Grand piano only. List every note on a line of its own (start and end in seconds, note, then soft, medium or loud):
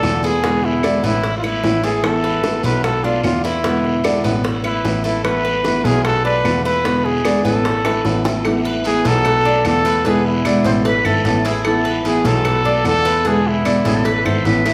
0.03 0.97 E2 medium
1.03 1.59 A1 medium
1.64 2.58 A1 medium
2.63 3.20 B1 medium
3.24 4.18 E2 medium
4.24 4.80 A1 medium
4.84 5.78 A1 medium
5.84 6.41 B1 medium
6.44 7.39 E2 medium
7.44 8.01 A1 medium
8.05 8.99 A1 medium
9.05 9.61 B1 loud
9.64 10.59 E2 medium
10.64 11.02 A1 medium
11.05 11.23 G#1 medium
11.24 12.19 A1 medium
12.24 12.81 B1 loud
12.85 13.79 E2 medium
13.85 14.22 A1 medium
14.25 14.44 G#1 medium
14.45 14.73 A1 medium